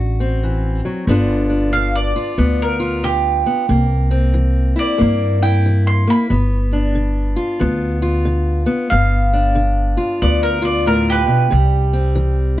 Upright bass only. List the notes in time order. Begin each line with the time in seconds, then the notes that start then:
Already playing: A1
1.07 G1
2.38 D2
3.69 C2
5.01 G2
6.30 G1
7.61 D2
8.92 G1
10.22 D2
11.52 C2